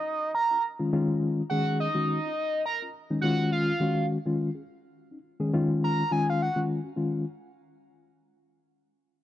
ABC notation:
X:1
M:4/4
L:1/16
Q:"Swing 16ths" 1/4=104
K:Ebm
V:1 name="Analog synth lead"
e2 b2 z6 g2 e4- | e2 b2 z2 g2 f4 z4 | z8 b2 a f g2 z2 | z16 |]
V:2 name="Reed electric piano"
z3 [DF] z [E,A,DF] [E,A,DF]3 z [E,A,DA]2 z [E,A,DG]2 [DF] | z3 [DF] z [E,A,DE] [E,A,DF]3 z [E,A,DG]2 z [E,A,DF]2 z | z3 [DE] z [E,A,DA] [E,A,DF]3 z [E,A,DF]2 z [E,A,DF]2 [DG] | [E,A,DF]2 z12 z2 |]